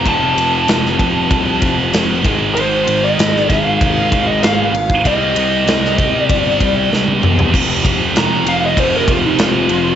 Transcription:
Already playing: tonewheel organ F3 C4 G4
0.04 picked electric bass F1, distorted electric guitar F2 C3 F3, kick, ride
0.08 lead electric guitar A5
0.36 picked electric bass F1, ride
0.68 picked electric bass F1, snare, ride
0.86 snare
0.99 picked electric bass F1, kick, ride
1.30 picked electric bass C2, kick, ride
1.62 picked electric bass F1, kick, ride
1.93 picked electric bass F1, snare, ride
2.23 picked electric bass G#1, distorted electric guitar G#2 D#3 G#3, tonewheel organ G#3 D#4 A#4, kick, ride
2.55 picked electric bass G#1, lead electric guitar C5, ride
2.87 picked electric bass G#1, ride
3.04 lead electric guitar D#5
3.19 picked electric bass G#1, snare, ride
3.36 snare
3.49 picked electric bass G#1, lead electric guitar F5, kick, snare, ride
3.81 picked electric bass G#1, kick, ride
4.12 picked electric bass G#1, kick, ride
4.27 lead electric guitar D#5
4.41 picked electric bass G#1, distorted electric guitar G#2 D#3 G#3, lead electric guitar F5, snare, ride
4.73 picked electric bass G#1, ride
4.90 kick
5.03 picked electric bass C2, distorted electric guitar C3 G3 C4, tonewheel organ C4 G4 D#5, lead electric guitar D#5, kick, ride
5.35 picked electric bass C2, ride
5.66 picked electric bass C2, snare, ride
5.85 snare
5.98 picked electric bass C2, kick, ride
6.22 lead electric guitar D5
6.29 picked electric bass G1, kick, ride
6.61 picked electric bass C2, kick, ride
6.92 picked electric bass C2, snare
7.08 high tom
7.20 picked electric bass E2, distorted electric guitar C3 G3 C4, mid tom
7.39 floor tom
7.51 picked electric bass F1, distorted electric guitar F2 C3 F3, tonewheel organ F3 C4 G4, kick, crash
7.84 picked electric bass F1, kick, ride
8.15 picked electric bass F1, lead electric guitar A#5, snare, ride
8.44 picked electric bass F1, ride
8.49 lead electric guitar F5
8.66 lead electric guitar D#5
8.77 picked electric bass F1, lead electric guitar C5, kick, ride
8.97 lead electric guitar A#4
9.08 picked electric bass F1, lead electric guitar F4, kick, ride
9.26 lead electric guitar D#4
9.38 picked electric bass F1, lead electric guitar F4, snare, ride
9.68 picked electric bass F1, distorted electric guitar C3 F3, ride
9.72 distorted electric guitar F2

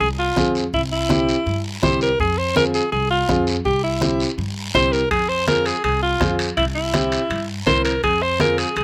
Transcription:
0.00 upright bass C2, alto saxophone G#4, high conga, long guiro
0.19 alto saxophone F4
0.36 upright bass F2, upright piano C4 F4 G#4, bombo low, bombo rim, high conga, short guiro
0.55 short guiro
0.73 upright bass C2, alto saxophone E4, bombo low, high conga, long guiro
0.92 alto saxophone E4
1.09 upright piano C4 E4 G4, bombo rim, high conga, short guiro
1.29 short guiro
1.46 upright bass G2, high conga, long guiro
1.82 upright bass C2, upright piano C4 E4 G4, alto saxophone C5, bombo low, bombo rim, high conga, short guiro
2.01 alto saxophone A#4, short guiro
2.20 upright bass F2, alto saxophone G#4, bombo low, high conga, long guiro
2.38 alto saxophone C5
2.56 upright piano C4 F4 G#4, alto saxophone A#4, bombo rim, high conga, short guiro
2.74 alto saxophone G#4, short guiro
2.92 upright bass C2, alto saxophone G#4, high conga, long guiro
3.10 alto saxophone F4
3.29 upright bass F2, upright piano C4 F4 G#4, bombo low, bombo rim, high conga, short guiro
3.47 short guiro
3.65 upright bass C2, alto saxophone G4, bombo low, high conga, long guiro
3.83 alto saxophone E4
4.01 upright piano C4 E4 G4, bombo rim, high conga, short guiro
4.20 short guiro
4.38 upright bass G2, high conga, long guiro
4.74 upright bass C2, upright piano C4 E4 G4, alto saxophone C5, bombo low, bombo rim, high conga, short guiro
4.92 alto saxophone A#4, short guiro
5.11 upright bass F2, alto saxophone G#4, bombo low, high conga, high timbale, long guiro
5.29 alto saxophone C5
5.47 upright piano C4 F4 G#4, alto saxophone A#4, bombo rim, high conga, high timbale, short guiro
5.66 alto saxophone G#4, high timbale, short guiro
5.84 upright bass C2, alto saxophone G#4, high conga, high timbale, long guiro
6.02 alto saxophone F4
6.20 upright bass F2, upright piano C4 F4 G#4, bombo low, bombo rim, high conga, high timbale, short guiro
6.39 high timbale, short guiro
6.57 upright bass C2, alto saxophone E4, bombo low, high conga, high timbale, long guiro
6.75 alto saxophone E4
6.94 upright piano C4 E4 G4, bombo rim, high conga, high timbale, short guiro
7.12 high timbale, short guiro
7.30 upright bass G2, high conga, high timbale, long guiro
7.66 upright bass C2, upright piano C4 E4 A#4, alto saxophone C5, bombo low, bombo rim, high conga, high timbale, short guiro
7.85 alto saxophone A#4, high timbale, short guiro
8.03 upright bass F2, alto saxophone G#4, bombo low, high conga, high timbale, long guiro
8.22 alto saxophone C5, bombo rim
8.39 upright piano C4 F4 G#4, alto saxophone A#4, bombo rim, high conga, high timbale, short guiro
8.58 alto saxophone G#4, high timbale, short guiro
8.76 upright bass C2, alto saxophone G#4, high conga, high timbale, long guiro

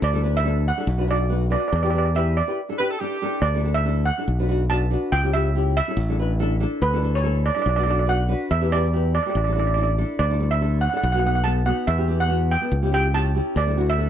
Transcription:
0.02 fingered electric bass D2, steel pan D5
0.13 nylon-string guitar D4 E4 A4
0.23 nylon-string guitar D4 E4 B4
0.37 steel pan E5
0.44 nylon-string guitar D4 E4 A4
0.68 steel pan F#5
0.77 nylon-string guitar D4 E4 A4
0.87 fingered electric bass B1
0.98 nylon-string guitar D4 F#4 B4
1.07 nylon-string guitar D4 F#4 A4, steel pan D5
1.29 nylon-string guitar D4 F#4 B4
1.50 nylon-string guitar D4 F#4 B4, steel pan D5
1.60 steel pan D5
1.68 steel pan D5
1.73 fingered electric bass E2, steel pan D5
1.83 nylon-string guitar E4 G4 B4, steel pan D5
1.90 nylon-string guitar E4 G4 B4, steel pan D5
1.98 steel pan D5
2.06 steel pan D5
2.14 nylon-string guitar E4 G4 B4, steel pan E5
2.37 steel pan D5
2.47 nylon-string guitar E4 G4 B4
2.69 nylon-string guitar D4 E4 A4
2.78 nylon-string guitar D4 E4 G4, horn section B4
2.90 horn section A4
3.00 nylon-string guitar D4 E4 A4, horn section G4
3.21 nylon-string guitar D4 E4 A4
3.42 fingered electric bass D2, steel pan D5
3.54 nylon-string guitar D4 E4 A4
3.63 nylon-string guitar D4 E4 A4
3.74 steel pan E5
3.85 nylon-string guitar D4 E4 A4
4.05 steel pan F#5
4.18 nylon-string guitar D4 E4 A4
4.28 fingered electric bass B1
4.39 nylon-string guitar D4 F#4 B4
4.48 nylon-string guitar D4 F#4 B4
4.70 nylon-string guitar D4 F#4 B4, steel pan A5
4.90 nylon-string guitar D4 F#4 B4
5.12 fingered electric bass C#2, steel pan G5
5.23 nylon-string guitar C#4 E4 G4
5.33 nylon-string guitar C#4 E4 G4, steel pan E5
5.55 nylon-string guitar C#4 E4 G4
5.77 steel pan E5
5.87 nylon-string guitar C#4 E4 A4
5.97 fingered electric bass A1
6.09 nylon-string guitar D4 E4 A4
6.19 nylon-string guitar D4 E4 B4
6.39 nylon-string guitar D4 E4 A4
6.60 nylon-string guitar D4 E4 A4
6.82 fingered electric bass D2, steel pan B4
6.93 nylon-string guitar D4 E4 A4
7.02 nylon-string guitar D4 E4 A4
7.15 steel pan C#5
7.23 nylon-string guitar D4 E4 A4
7.46 steel pan D5
7.54 nylon-string guitar D4 E4 A4, steel pan D5
7.62 steel pan D5
7.66 fingered electric bass B1, steel pan D5
7.76 nylon-string guitar D4 F#4 B4, steel pan D5
7.83 nylon-string guitar D4 F#4 A4, steel pan D5
7.91 steel pan D5
7.99 steel pan D5
8.06 nylon-string guitar D4 F#4 B4, steel pan F#5
8.28 nylon-string guitar D4 F#4 B4
8.51 fingered electric bass E2, steel pan E5
8.61 nylon-string guitar E4 G4 B4
8.71 nylon-string guitar E4 G4 B4, steel pan D5
8.93 nylon-string guitar E4 G4 B4
9.15 steel pan D5
9.23 nylon-string guitar E4 G4 A4, steel pan D5
9.30 steel pan D5
9.35 fingered electric bass A1, steel pan D5
9.44 nylon-string guitar D4 E4 A4, steel pan D5
9.53 nylon-string guitar D4 E4 A4, steel pan D5
9.59 steel pan D5
9.67 steel pan D5
9.74 nylon-string guitar D4 E4 A4, steel pan D5
9.83 steel pan D5
9.98 nylon-string guitar D4 E4 A4
10.19 fingered electric bass D2, steel pan D5
10.30 nylon-string guitar D4 E4 A4
10.39 nylon-string guitar D4 E4 A4
10.51 steel pan E5
10.61 nylon-string guitar D4 E4 A4
10.81 steel pan F#5
10.90 nylon-string guitar D4 E4, steel pan F#5
10.94 nylon-string guitar A4, steel pan F#5
11.03 fingered electric bass B1, steel pan F#5
11.12 nylon-string guitar B3 D#4 F#4, steel pan F#5
11.19 nylon-string guitar B3, steel pan F#5
11.24 nylon-string guitar D#4 F#4, steel pan F#5
11.35 steel pan F#5
11.44 nylon-string guitar B3 D#4 A4, steel pan A5
11.66 nylon-string guitar B3 D#4 F#4, steel pan F#5
11.87 fingered electric bass E2, steel pan E5
11.98 nylon-string guitar B3 E4 G4
12.07 nylon-string guitar B3 E4 G4
12.20 steel pan F#5
12.28 nylon-string guitar B3 E4 F#4
12.51 steel pan G5
12.61 nylon-string guitar B3 E4 A4
12.72 fingered electric bass C#2
12.82 nylon-string guitar C#4 E4 G4
12.91 nylon-string guitar C#4 E4 G4, steel pan G5
13.13 nylon-string guitar C#4 E4 G4, steel pan A5
13.34 nylon-string guitar C#4 E4 G4
13.56 fingered electric bass D2, steel pan D5
13.67 nylon-string guitar D4 E4 A4
13.77 nylon-string guitar D4 E4 F#4
13.90 steel pan E5
13.98 nylon-string guitar D4 E4 A4

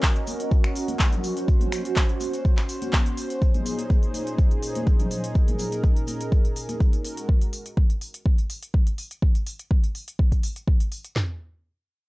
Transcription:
Already playing: ambient pad C#4 F#4 D#5 G#5, analog synth pad C#4 F#4 A#4
0.03 kick, clap, cabasa
0.16 closed hi-hat
0.27 open hi-hat, high conga, cabasa
0.40 closed hi-hat, cabasa
0.51 kick, cabasa
0.64 finger snap, closed hi-hat
0.76 open hi-hat, cabasa
0.88 closed hi-hat, high conga, cabasa
0.99 kick, clap, cabasa
1.12 closed hi-hat, low conga
1.24 analog synth pad C5, open hi-hat, cabasa
1.37 closed hi-hat, cabasa
1.48 kick, cabasa
1.60 closed hi-hat, high conga, low conga
1.72 finger snap, open hi-hat, cabasa
1.85 closed hi-hat, cabasa
1.96 kick, clap, cabasa
2.09 closed hi-hat
2.20 open hi-hat, high conga, cabasa
2.34 closed hi-hat, cabasa
2.45 kick, cabasa
2.57 finger snap, clap, closed hi-hat
2.69 open hi-hat, cabasa
2.82 closed hi-hat, high conga, cabasa
2.93 kick, clap, cabasa
3.06 closed hi-hat
3.17 open hi-hat, cabasa
3.30 closed hi-hat, cabasa
3.42 analog synth pad A#2 D#4 G#4, kick, cabasa
3.54 closed hi-hat, high conga, low conga
3.66 open hi-hat, cabasa
3.79 closed hi-hat, cabasa
3.90 kick, cabasa
4.03 closed hi-hat
4.14 open hi-hat, high conga, cabasa
4.27 closed hi-hat, cabasa
4.38 kick, cabasa
4.51 closed hi-hat
4.63 open hi-hat, cabasa
4.75 closed hi-hat, high conga, cabasa
4.87 kick, cabasa
5.00 closed hi-hat, low conga
5.11 open hi-hat, cabasa
5.24 closed hi-hat, cabasa
5.35 analog synth pad A#4, kick, cabasa
5.48 closed hi-hat, high conga, low conga
5.59 open hi-hat, cabasa
5.72 closed hi-hat, cabasa
5.84 kick, cabasa
5.96 closed hi-hat
6.07 open hi-hat, high conga, cabasa
6.20 closed hi-hat, cabasa
6.32 kick, cabasa
6.45 closed hi-hat
6.56 open hi-hat, cabasa
6.69 closed hi-hat, high conga, cabasa
6.80 kick, cabasa
6.93 closed hi-hat
7.05 analog synth pad G#3 F#4 A#4, open hi-hat, cabasa
7.17 closed hi-hat, cabasa
7.29 kick
7.42 closed hi-hat
7.53 open hi-hat
7.66 closed hi-hat
7.77 kick
7.90 closed hi-hat
8.01 open hi-hat
8.14 closed hi-hat
8.26 kick
8.38 closed hi-hat
8.50 open hi-hat
8.63 closed hi-hat
8.74 kick
8.87 closed hi-hat
8.98 open hi-hat
9.11 closed hi-hat
9.22 kick
9.35 closed hi-hat
9.47 open hi-hat
9.59 closed hi-hat
9.71 kick
9.84 closed hi-hat
9.95 open hi-hat
10.08 closed hi-hat
10.19 kick
10.32 kick, closed hi-hat
10.43 open hi-hat
10.56 closed hi-hat
10.67 kick
10.80 closed hi-hat
10.92 open hi-hat
11.05 closed hi-hat
11.16 snare, clap, floor tom

